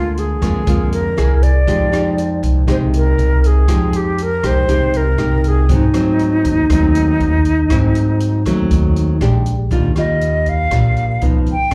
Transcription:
0.00 0.38 D2 medium
0.00 0.64 D3 medium
0.00 0.37 G#3 medium
0.00 0.37 A#3 medium
0.00 0.20 F4 medium
0.00 0.38 F4 medium
0.17 0.92 G#4 medium
0.17 closed hi-hat soft
0.42 0.65 F2 loud
0.42 0.63 G#3 medium
0.42 0.63 A#3 medium
0.42 0.63 F4 medium
0.42 kick soft
0.42 cross-stick medium
0.42 closed hi-hat soft
0.67 1.13 F2 loud
0.67 1.15 D3 medium
0.67 0.99 G#3 medium
0.67 0.99 A#3 medium
0.67 1.00 F4 medium
0.67 kick medium
0.67 closed hi-hat medium
0.92 1.44 A#4 medium
0.92 closed hi-hat soft
1.17 1.64 C2 medium
1.17 1.51 A#3 medium
1.17 1.51 E4 medium
1.17 1.51 G#4 medium
1.17 cross-stick medium
1.17 closed hi-hat soft
1.42 2.43 D5 medium
1.42 kick soft
1.42 closed hi-hat soft
1.67 2.39 F2 medium
1.67 2.65 F3 medium
1.67 1.88 G#3 medium
1.67 1.89 D#4 medium
1.67 1.89 G4 medium
1.67 kick medium
1.67 closed hi-hat soft
1.92 2.64 G#3 medium
1.92 2.64 D#4 medium
1.92 2.64 G4 medium
1.92 cross-stick medium
1.92 closed hi-hat soft
2.18 closed hi-hat soft
2.43 2.66 C2 medium
2.43 kick soft
2.43 closed hi-hat soft
2.67 3.15 C2 loud
2.67 3.66 C3 medium
2.67 3.64 G#3 medium
2.67 3.64 D#4 medium
2.67 3.65 G4 soft
2.67 kick medium
2.67 cross-stick medium
2.67 closed hi-hat medium
2.71 2.77 C5 medium
2.94 3.48 A#4 medium
2.94 closed hi-hat soft
3.18 3.65 C2 medium
3.18 closed hi-hat soft
3.43 3.98 G#4 medium
3.43 kick soft
3.43 closed hi-hat soft
3.68 4.39 F2 medium
3.68 4.66 F3 medium
3.68 4.18 G#3 medium
3.68 4.19 D#4 medium
3.68 4.18 G4 medium
3.68 kick medium
3.68 cross-stick medium
3.68 closed hi-hat medium
3.93 4.24 G4 medium
3.93 closed hi-hat soft
4.18 closed hi-hat soft
4.23 4.48 A#4 medium
4.43 4.67 C2 medium
4.43 4.65 G#3 medium
4.43 4.65 D#4 medium
4.43 4.65 G4 medium
4.43 4.98 C5 loud
4.43 kick soft
4.43 cross-stick medium
4.43 closed hi-hat soft
4.68 5.15 C2 medium
4.68 5.67 C3 soft
4.68 5.01 G#3 medium
4.68 5.01 D#4 medium
4.68 5.02 G4 medium
4.68 kick medium
4.68 closed hi-hat medium
4.93 5.50 A#4 medium
4.93 closed hi-hat soft
5.18 5.66 C2 loud
5.18 5.67 G#3 medium
5.18 5.67 D#4 medium
5.18 5.67 G4 medium
5.18 cross-stick soft
5.18 closed hi-hat soft
5.44 kick soft
5.44 closed hi-hat soft
5.48 5.71 G#4 medium
5.69 6.41 G#2 medium
5.69 6.67 G#2 medium
5.69 5.84 F#3 medium
5.69 5.84 A3 medium
5.69 5.85 C4 medium
5.69 kick medium
5.69 closed hi-hat medium
5.73 9.19 D#4 medium
5.94 6.66 F#3 medium
5.94 6.66 A3 medium
5.94 6.66 C4 medium
5.94 cross-stick medium
5.94 closed hi-hat soft
6.19 closed hi-hat soft
6.45 6.68 D#2 loud
6.45 kick soft
6.45 closed hi-hat soft
6.70 7.17 D#2 loud
6.70 7.68 D#3 medium
6.70 7.37 F#3 medium
6.70 7.38 A3 medium
6.70 7.38 C4 medium
6.70 kick medium
6.70 cross-stick medium
6.70 closed hi-hat medium
6.95 closed hi-hat soft
7.20 7.67 D#2 medium
7.20 closed hi-hat soft
7.45 kick soft
7.45 closed hi-hat soft
7.70 8.42 G#2 medium
7.70 8.69 G#2 medium
7.70 8.42 F#3 medium
7.70 8.42 A3 medium
7.70 8.42 C4 medium
7.70 kick medium
7.70 cross-stick medium
7.70 closed hi-hat medium
7.95 closed hi-hat soft
8.20 closed hi-hat soft
8.45 8.69 D#2 medium
8.45 9.17 F#3 medium
8.45 9.18 A3 medium
8.45 9.18 C4 medium
8.45 kick soft
8.45 cross-stick medium
8.45 closed hi-hat soft
8.71 9.17 D#2 medium
8.71 9.19 D#3 soft
8.71 kick medium
8.71 closed hi-hat medium
8.96 closed hi-hat soft
9.21 9.68 A#1 loud
9.21 9.55 G#3 medium
9.21 9.55 D4 medium
9.21 9.55 G4 medium
9.21 cross-stick medium
9.21 closed hi-hat soft
9.46 kick soft
9.46 closed hi-hat soft
9.71 9.94 D#2 loud
9.71 10.69 D#3 medium
9.71 9.92 G3 medium
9.71 9.93 D4 medium
9.71 9.93 F4 medium
9.71 kick medium
9.71 closed hi-hat soft
9.96 10.67 D#2 medium
9.96 10.68 G3 medium
9.96 10.68 F4 medium
9.96 10.50 D#5 medium
9.96 cross-stick soft
9.96 closed hi-hat soft
10.21 closed hi-hat soft
10.46 11.23 F5 loud
10.46 kick soft
10.46 closed hi-hat soft
10.71 11.18 A#1 medium
10.71 11.19 A#2 medium
10.71 11.05 G3 soft
10.71 11.06 D4 soft
10.71 11.06 F4 medium
10.71 kick medium
10.71 cross-stick medium
10.71 closed hi-hat soft
10.96 closed hi-hat soft
11.21 11.45 C#2 medium
11.21 11.54 F3 soft
11.21 11.54 B3 medium
11.21 11.55 D#4 medium
11.21 closed hi-hat soft
11.46 11.70 C#2 medium
11.46 kick soft
11.46 closed hi-hat soft
11.52 11.73 G5 medium
11.71 11.74 C3 soft
11.71 cross-stick medium
11.71 closed hi-hat soft

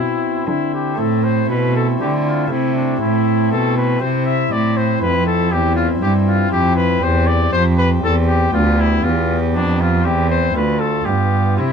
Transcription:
0.00 0.43 B2 soft
0.00 0.43 B2 medium
0.00 0.93 C4 soft
0.00 0.46 E4 medium
0.00 0.94 E4 soft
0.47 0.95 D3 medium
0.47 0.95 D3 soft
0.47 0.71 E4 medium
0.74 1.00 G4 medium
0.95 1.46 A2 medium
0.95 2.44 A3 soft
0.95 2.46 C4 soft
0.95 2.47 E4 soft
0.99 1.46 A2 soft
0.99 1.25 A4 medium
1.24 1.49 C5 medium
1.49 2.00 B2 medium
1.49 1.97 B2 soft
1.49 1.75 B4 medium
1.76 1.87 A4 medium
2.00 2.48 D3 soft
2.00 2.50 D3 medium
2.00 2.12 G4 medium
2.27 2.53 F4 medium
2.46 3.96 A3 soft
2.46 3.97 C4 soft
2.46 3.98 E4 soft
2.51 3.00 C3 medium
2.51 2.98 C3 soft
2.51 2.74 E4 medium
2.75 3.00 D4 medium
3.01 3.48 A2 soft
3.01 3.55 A2 medium
3.01 3.51 E4 medium
3.51 3.98 B2 medium
3.51 4.02 B2 medium
3.51 3.76 A4 medium
3.77 4.02 B4 medium
4.00 4.49 C3 soft
4.00 4.51 C3 medium
4.00 5.48 C4 soft
4.00 5.49 E4 soft
4.00 4.25 C5 medium
4.25 4.53 E5 medium
4.52 5.02 A2 medium
4.52 4.99 A2 soft
4.52 4.78 D5 medium
4.77 5.01 C5 medium
5.01 5.55 F2 medium
5.01 5.49 F2 medium
5.01 5.26 B4 medium
5.26 5.53 A4 medium
5.50 5.99 E2 medium
5.50 6.02 E2 medium
5.50 6.98 C4 soft
5.50 6.98 E4 soft
5.50 5.75 G4 medium
5.76 5.87 F4 medium
6.02 6.52 G2 medium
6.02 6.49 G2 medium
6.02 6.13 G4 medium
6.27 6.51 F4 medium
6.52 7.02 F2 medium
6.52 6.99 F2 medium
6.52 6.76 G4 loud
6.76 7.04 B4 medium
7.01 7.52 E2 medium
7.01 7.50 E2 medium
7.01 8.49 C4 medium
7.01 8.50 G4 medium
7.01 7.28 C5 medium
7.27 7.52 D5 medium
7.52 8.00 F2 medium
7.52 8.03 F2 medium
7.52 7.64 C5 loud
7.77 7.89 B4 medium
8.03 8.53 E2 medium
8.03 8.50 E2 medium
8.03 8.15 A4 loud
8.27 8.53 G4 medium
8.51 9.03 D2 medium
8.51 9.01 D2 medium
8.51 10.00 B3 medium
8.51 8.81 F4 medium
8.51 10.01 G4 medium
8.80 9.05 E4 medium
9.03 9.57 E2 medium
9.03 9.51 E2 medium
9.03 9.37 F4 medium
9.55 10.06 F2 medium
9.55 10.02 F2 medium
9.55 9.82 D4 medium
9.81 10.06 F4 medium
10.03 10.55 E2 medium
10.03 10.52 E2 medium
10.03 10.53 C4 medium
10.03 10.54 E4 soft
10.03 10.29 G4 medium
10.30 10.55 C5 medium
10.54 11.06 D2 medium
10.54 11.04 D2 medium
10.54 11.05 A3 soft
10.54 11.05 F4 soft
10.54 10.81 B4 medium
10.79 11.07 A4 medium
11.05 11.60 G2 medium
11.05 11.56 G2 medium
11.05 11.57 B3 soft
11.05 11.58 F4 soft
11.05 11.57 G4 medium
11.57 11.73 C3 medium
11.57 11.73 C4 soft
11.57 11.73 E4 medium
11.57 11.73 E4 soft

